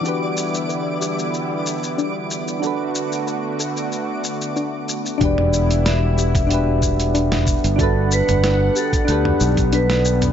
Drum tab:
HH |----------------|----------------|x--xx--xx--xxx-x|x--xx--xx--xxx-x|
SH |x-xxx-xxx-xxx-xx|x-xxx-xxx-xxx-xx|x-xxx-xxx-xxx-xx|x-xxx-xxx-xxx-xx|
SD |----------------|----------------|----o--------o--|----o--------o--|
T2 |----------------|----------------|-o-----o-----o--|---o-----o-----o|
BD |----------------|----------------|o------o--o---o-|o------o---o----|